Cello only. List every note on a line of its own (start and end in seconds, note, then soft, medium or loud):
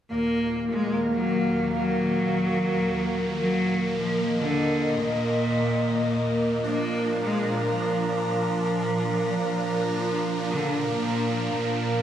0.11 0.64 A#3 medium
0.72 1.03 G#3 medium
1.13 1.66 F#3 medium
1.74 3.29 F#3 medium
3.37 3.90 F#3 loud
3.98 4.30 F3 medium
4.39 4.92 D3 medium
5.00 6.56 A#2 medium
6.64 7.17 A#3 medium
7.25 7.57 G#3 medium
7.66 8.19 F3 medium
8.27 9.82 F3 loud
9.90 10.43 F3 loud
10.52 10.83 D3 medium
10.92 11.45 A#2 medium
11.54 12.02 A#2 medium